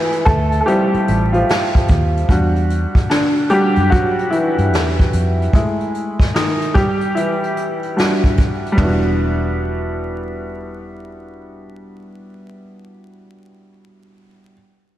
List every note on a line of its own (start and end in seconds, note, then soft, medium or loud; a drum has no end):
0.00 0.24 E3 medium
0.00 0.28 G#3 medium
0.00 0.27 A3 soft
0.00 0.29 E4 medium
0.12 closed hi-hat medium
0.25 0.61 D2 loud
0.25 0.60 A3 medium
0.25 0.59 A4 loud
0.25 kick loud
0.25 closed hi-hat medium
0.52 closed hi-hat medium
0.61 0.66 A4 medium
0.66 1.33 F3 soft
0.66 1.30 G3 medium
0.66 2.25 C4 soft
0.66 2.26 E4 medium
0.66 1.29 G4 medium
0.66 closed hi-hat medium
0.94 muted fingered electric bass stroke soft
0.94 closed hi-hat soft
1.08 1.42 A1 medium
1.08 closed hi-hat medium
1.33 1.85 F3 medium
1.33 1.84 F4 medium
1.33 closed hi-hat soft
1.49 snare loud
1.49 closed hi-hat medium
1.75 kick medium
1.75 closed hi-hat soft
1.88 2.23 D#2 medium
1.88 kick loud
1.88 closed hi-hat medium
2.17 closed hi-hat soft
2.29 2.85 E2 medium
2.29 3.47 G3 medium
2.29 3.08 D4 soft
2.29 3.47 F#4 medium
2.29 kick medium
2.29 closed hi-hat medium
2.56 closed hi-hat soft
2.70 closed hi-hat medium
2.95 kick medium
2.95 closed hi-hat soft
3.10 3.49 D3 medium
3.10 3.48 D4 medium
3.10 snare loud
3.10 closed hi-hat medium
3.36 closed hi-hat soft
3.50 3.89 G3 medium
3.50 3.88 D4 soft
3.50 3.88 F#4 medium
3.50 3.92 G4 loud
3.50 closed hi-hat medium
3.76 3.89 F#2 medium
3.76 closed hi-hat soft
3.90 4.01 F#3 medium
3.90 3.99 F#4 medium
3.90 kick medium
3.90 closed hi-hat medium
4.19 closed hi-hat soft
4.31 5.09 E3 medium
4.31 5.08 E4 medium
4.31 closed hi-hat medium
4.58 4.73 G2 medium
4.58 closed hi-hat soft
4.73 5.07 E2 medium
4.73 snare medium
4.73 closed hi-hat medium
4.99 kick medium
4.99 closed hi-hat soft
5.13 5.47 F2 medium
5.13 closed hi-hat medium
5.42 closed hi-hat soft
5.53 6.12 G#3 soft
5.53 6.12 A3 soft
5.53 6.13 E4 medium
5.53 kick loud
5.53 closed hi-hat medium
5.80 closed hi-hat soft
5.95 closed hi-hat medium
6.20 kick medium
6.20 snare soft
6.20 closed hi-hat soft
6.34 6.73 D#3 medium
6.34 6.76 D#4 medium
6.34 snare loud
6.34 closed hi-hat medium
6.61 closed hi-hat soft
6.74 7.13 G3 medium
6.74 7.17 G4 loud
6.74 kick loud
6.74 closed hi-hat medium
7.01 closed hi-hat soft
7.15 8.34 E3 medium
7.15 8.33 E4 medium
7.15 closed hi-hat medium
7.44 closed hi-hat soft
7.57 closed hi-hat medium
7.83 closed hi-hat soft
7.97 8.71 G3 medium
7.97 8.74 D4 soft
7.97 8.74 F#4 medium
7.97 snare medium
7.97 closed hi-hat medium
8.24 kick medium
8.24 closed hi-hat soft
8.37 kick loud
8.37 closed hi-hat medium
8.66 closed hi-hat soft
8.72 13.05 G3 medium
8.72 13.08 B3 medium
8.78 13.11 E1 medium
8.78 13.11 D4 medium
8.78 13.15 E4 medium
8.78 kick medium
8.78 floor tom medium
8.84 13.18 F#4 medium